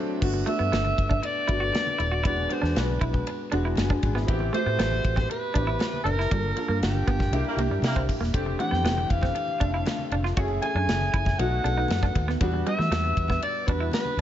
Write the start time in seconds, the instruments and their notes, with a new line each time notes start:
Already playing: grand piano F#3 A3 C4 D4 E4
0.21 fingered electric bass G1, grand piano A3 B3 D4 F#4, kick, crash
0.33 muted clean electric guitar stroke, high conga
0.46 grand piano A3 B3 D4 F#4, clean electric guitar A3, alto saxophone E5, ride
0.59 fingered electric bass G2, clean electric guitar B3
0.72 fingered electric bass G1, clean electric guitar B3, snare, ride
0.85 muted clean electric guitar stroke, muted conga, high conga
0.98 fingered electric bass G1, kick, ride
1.09 clean electric guitar D4, kick, low conga
1.23 alto saxophone D5, muted clean electric guitar stroke, ride, muted conga
1.47 fingered electric bass G1, grand piano A3 B3 D4 F#4, clean electric guitar E4, kick, ride
1.60 clean electric guitar F#4
1.72 muted clean electric guitar stroke, snare, ride, high conga
1.86 muted conga, high conga
1.98 fingered electric bass D#1, clean electric guitar E4, ride, low conga
2.11 clean electric guitar F#4
2.24 fingered electric bass E1, grand piano G#3 B3 D4 F#4, clean electric guitar E4, alto saxophone D5, kick, ride
2.36 high conga
2.49 grand piano G#3 B3 D4 F#4, alto saxophone C5, muted clean electric guitar stroke, ride
2.62 fingered electric bass E2, clean electric guitar D4, snare
2.75 fingered electric bass B1, snare, ride, muted conga
2.79 alto saxophone B4
2.89 high conga
3.01 fingered electric bass B1, clean electric guitar E4, kick, ride
3.13 kick, low conga
3.27 muted clean electric guitar stroke, ride, muted conga
3.51 fingered electric bass E1, grand piano G#3 B3 D4 F#4, clean electric guitar D4, ride
3.65 clean electric guitar E4
3.75 fingered electric bass F#1, grand piano D4 G#4, snare, ride, high conga
3.90 clean electric guitar D4, grand piano F#4 B4, kick, muted conga, high conga
4.02 fingered electric bass G#1, grand piano D4 G#4, muted clean electric guitar stroke, kick, ride, low conga
4.15 clean electric guitar B3, grand piano B3 E4, snare
4.27 fingered electric bass A1, grand piano B3 C4 E4 G4, kick, ride, muted conga
4.39 muted clean electric guitar stroke, high conga
4.53 clean electric guitar A3, grand piano A3 C4 E4 F#4, alto saxophone C5, ride
4.66 fingered electric bass A2, clean electric guitar B3
4.78 fingered electric bass A1, clean electric guitar B3, snare, ride
4.91 muted clean electric guitar stroke, high conga
5.05 fingered electric bass A1, kick, ride
5.16 clean electric guitar C4, kick, snare, low conga
5.30 alto saxophone B4, muted clean electric guitar stroke, ride, muted conga
5.54 fingered electric bass A1, grand piano B3 C4 E4 G4, clean electric guitar D4, kick, ride
5.67 clean electric guitar E4
5.79 muted clean electric guitar stroke, snare, ride, high conga
5.93 high conga
6.04 fingered electric bass F#1, clean electric guitar D4, alto saxophone A#4, ride, low conga
6.19 clean electric guitar E4, snare
6.30 fingered electric bass G1, clean electric guitar G3, grand piano A#3 D4 F4 A4, kick, ride
6.43 muted conga, high conga
6.57 grand piano A#3 D4 F4 A4, muted clean electric guitar stroke, ride
6.68 fingered electric bass G2, clean electric guitar A#3
6.81 fingered electric bass G1, alto saxophone G4, snare, ride
6.94 high conga
7.07 fingered electric bass G1, clean electric guitar B3, kick, ride
7.19 kick, snare, low conga
7.31 fingered electric bass C2, grand piano A#3 D4 E4 G4, muted clean electric guitar stroke, ride, muted conga
7.44 horn section G3 A#3 E4 A#4, muted conga
7.57 fingered electric bass C2, grand piano A#3 D4 E4 G4, clean electric guitar A#3, ride
7.70 fingered electric bass G2, clean electric guitar G3
7.82 fingered electric bass C3, horn section G3 A#3 E4 A#4, snare, ride, high conga
7.95 fingered electric bass C2, clean electric guitar C4, kick, muted conga, high conga
8.09 muted clean electric guitar stroke, kick, open hi-hat, ride, low conga
8.20 fingered electric bass E1, clean electric guitar A#3, snare
8.34 fingered electric bass F1, grand piano A3 C4 D4 G4, kick, hi-hat pedal, ride
8.45 muted clean electric guitar stroke, muted conga, high conga
8.59 grand piano E3 A3 C4 D4, clean electric guitar A3, alto saxophone G5, ride
8.71 fingered electric bass F2, clean electric guitar B3, snare
8.83 fingered electric bass F1, clean electric guitar B3, snare, ride, muted conga
8.97 muted clean electric guitar stroke, high conga
9.10 fingered electric bass F1, alto saxophone F5, kick, ride
9.21 clean electric guitar C4, kick, snare, low conga
9.35 muted clean electric guitar stroke, ride
9.48 muted conga
9.60 fingered electric bass F1, grand piano A3 C4 D4 A4, clean electric guitar D4, kick, ride
9.74 clean electric guitar E4
9.86 muted clean electric guitar stroke, snare, ride, muted conga, high conga
9.98 muted conga, high conga
10.11 fingered electric bass F1, clean electric guitar D4, ride, low conga
10.24 clean electric guitar F4, snare
10.37 fingered electric bass F#1, grand piano A3 C#4 E4 G#4, clean electric guitar F#4, kick, ride
10.48 muted conga, high conga
10.61 grand piano A3 C#4 E4 G#4, alto saxophone G#5, muted clean electric guitar stroke, ride
10.75 fingered electric bass F#2, clean electric guitar D4
10.87 fingered electric bass F#1, snare, ride
11.01 muted conga, high conga
11.14 fingered electric bass F#1, clean electric guitar E4, kick, ride
11.25 kick, snare, low conga
11.39 fingered electric bass B1, grand piano A3 B3 D#4 F#4, alto saxophone F#5, muted clean electric guitar stroke, ride
11.64 fingered electric bass B1, grand piano A3 B3 D#4 A4, clean electric guitar D4, ride
11.78 clean electric guitar D#4
11.88 fingered electric bass F#2, snare, ride, high conga
12.02 clean electric guitar D4, kick, high conga
12.15 fingered electric bass D#2, muted clean electric guitar stroke, kick, ride, low conga
12.28 clean electric guitar B3, snare
12.41 fingered electric bass E2, grand piano G3 B3 D4 F#4, kick, ride
12.52 muted clean electric guitar stroke, high conga
12.66 grand piano G3 B3 D4 F#4, clean electric guitar G3, alto saxophone E5, ride
12.79 fingered electric bass E3, clean electric guitar A3, snare
12.91 fingered electric bass E2, clean electric guitar A3, snare, ride
13.04 muted clean electric guitar stroke, high conga
13.17 fingered electric bass E2, kick, ride
13.28 clean electric guitar B3, kick, snare, low conga
13.42 alto saxophone D5, muted clean electric guitar stroke, ride, muted conga
13.66 fingered electric bass E2, grand piano G3 B3 D4 F#4, clean electric guitar D4, alto saxophone B4, kick, ride
13.80 clean electric guitar E4
13.92 alto saxophone B4, muted clean electric guitar stroke, snare, ride, high conga
14.05 high conga
14.17 fingered electric bass D#2